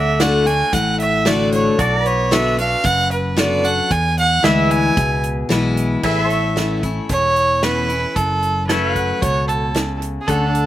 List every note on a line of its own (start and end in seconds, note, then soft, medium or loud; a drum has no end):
0.00 0.62 D2 medium
0.00 0.18 D3 medium
0.00 1.77 F#4 medium
0.00 1.77 A4 medium
0.00 1.78 D5 medium
0.00 0.22 E5 loud
0.20 0.45 D3 medium
0.20 0.45 A3 medium
0.20 0.46 D4 medium
0.20 0.44 F#4 loud
0.20 0.48 F#5 medium
0.20 snare loud
0.20 closed hi-hat medium
0.46 0.73 D4 medium
0.46 0.71 F#4 medium
0.46 0.74 G#5 loud
0.46 closed hi-hat medium
0.72 1.68 A1 medium
0.72 1.74 A2 medium
0.72 0.99 F#5 medium
0.72 kick loud
0.72 closed hi-hat medium
1.00 1.28 E5 loud
1.00 closed hi-hat medium
1.25 1.76 D3 medium
1.25 1.76 A3 medium
1.25 1.77 D4 loud
1.25 1.77 F#4 loud
1.25 1.52 D5 loud
1.25 snare loud
1.25 closed hi-hat medium
1.52 1.81 C#5 medium
1.52 closed hi-hat medium
1.79 2.74 B1 loud
1.79 2.80 B2 medium
1.79 3.89 F#4 medium
1.79 2.05 A4 medium
1.79 2.08 D5 medium
1.79 3.90 D5 medium
1.79 kick loud
1.79 closed hi-hat medium
2.05 3.90 B4 medium
2.05 2.33 C#5 medium
2.05 closed hi-hat medium
2.31 2.57 D3 loud
2.31 2.58 B3 loud
2.31 2.58 D4 loud
2.31 2.56 F#4 medium
2.31 2.58 E5 loud
2.31 snare loud
2.31 closed hi-hat medium
2.57 2.85 D4 medium
2.57 2.83 F#4 medium
2.57 2.87 F5 loud
2.57 closed hi-hat medium
2.84 3.80 F#1 medium
2.84 3.85 F#2 medium
2.84 3.11 F#5 loud
2.84 kick loud
2.84 closed hi-hat medium
3.11 3.40 B4 medium
3.11 closed hi-hat medium
3.37 3.63 D3 loud
3.37 3.63 B3 loud
3.37 3.64 D4 medium
3.37 3.62 F#4 medium
3.37 3.66 D5 loud
3.37 snare loud
3.37 closed hi-hat medium
3.64 3.91 D4 medium
3.64 3.90 F#4 medium
3.64 3.93 F#5 loud
3.64 closed hi-hat medium
3.90 4.39 E2 medium
3.90 4.92 E2 medium
3.90 4.18 G#5 loud
3.90 kick loud
3.90 closed hi-hat medium
4.18 4.46 F#5 loud
4.18 closed hi-hat medium
4.43 4.89 D2 medium
4.43 4.94 E3 medium
4.43 4.95 G#3 medium
4.43 4.95 B3 medium
4.43 4.95 E4 loud
4.43 6.02 G#4 medium
4.43 6.03 B4 medium
4.43 4.72 E5 medium
4.43 6.03 E5 medium
4.43 snare loud
4.43 closed hi-hat medium
4.71 5.24 G#5 loud
4.71 closed hi-hat medium
4.97 5.42 C#2 medium
4.97 5.98 B2 medium
4.97 kick loud
4.97 closed hi-hat medium
5.24 closed hi-hat medium
5.49 5.96 B1 medium
5.49 6.00 E3 medium
5.49 6.01 G#3 medium
5.49 6.01 B3 medium
5.49 6.01 E4 loud
5.49 snare loud
5.49 closed hi-hat medium
5.77 closed hi-hat medium
6.03 6.99 A1 medium
6.03 7.05 A2 medium
6.03 6.24 G#4 medium
6.03 6.29 B4 medium
6.03 6.79 E5 loud
6.03 8.15 E5 medium
6.03 kick medium
6.03 crash medium
6.24 8.14 A4 medium
6.29 8.14 C#5 medium
6.29 closed hi-hat medium
6.56 6.82 E3 medium
6.56 6.82 B3 medium
6.56 6.83 C#4 medium
6.56 6.82 E4 medium
6.56 snare medium
6.56 closed hi-hat medium
6.83 7.10 C#4 soft
6.83 7.09 E4 medium
6.83 kick medium
6.83 closed hi-hat medium
7.09 8.05 E1 medium
7.09 8.11 E2 medium
7.09 7.64 C#5 loud
7.09 kick loud
7.09 closed hi-hat medium
7.36 closed hi-hat medium
7.63 7.88 E3 medium
7.63 7.89 B3 medium
7.63 7.89 C#4 medium
7.63 7.87 E4 medium
7.63 8.17 B4 loud
7.63 snare loud
7.63 closed hi-hat medium
7.89 8.16 C#4 soft
7.89 8.15 E4 medium
7.89 closed hi-hat soft
8.15 9.11 F#1 medium
8.15 9.17 F#2 medium
8.15 8.66 A4 medium
8.15 kick loud
8.15 closed hi-hat medium
8.43 closed hi-hat medium
8.67 9.20 F#3 medium
8.67 10.26 A4 medium
8.67 9.23 B4 medium
8.67 snare medium
8.67 closed hi-hat medium
8.71 9.20 A3 medium
8.71 9.20 C#4 medium
8.71 9.21 F#4 medium
8.71 10.28 C#5 medium
8.71 8.97 E5 medium
8.96 10.28 F#5 medium
8.96 kick medium
8.96 closed hi-hat medium
9.21 10.17 C#2 medium
9.21 9.73 B2 medium
9.21 9.47 C#5 loud
9.21 kick loud
9.21 closed hi-hat medium
9.47 9.97 A4 medium
9.47 closed hi-hat medium
9.75 10.25 C#3 medium
9.75 snare loud
9.75 closed hi-hat medium
10.02 closed hi-hat medium
10.21 10.29 G#4 medium
10.28 10.66 D2 medium
10.28 10.66 D3 medium
10.28 10.49 C#4 medium
10.28 10.66 A4 medium
10.28 10.66 F#5 medium
10.28 kick loud
10.28 closed hi-hat medium
10.49 10.66 D4 medium
10.55 closed hi-hat medium